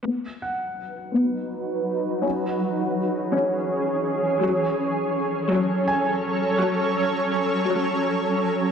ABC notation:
X:1
M:6/8
L:1/8
Q:3/8=55
K:F#dor
V:1 name="Grand piano"
z f4- f- | f z4 z | z4 g2- | g4 z2 |]
V:2 name="Ambient pad"
[F,DFB]6 | [E,CGc]6 | [F,CAc]6- | [F,CAc]6 |]
V:3 name="Viola section" clef=bass
B,3 B,3 | C3 C3 | F,3 F,3 | F,3 F,3 |]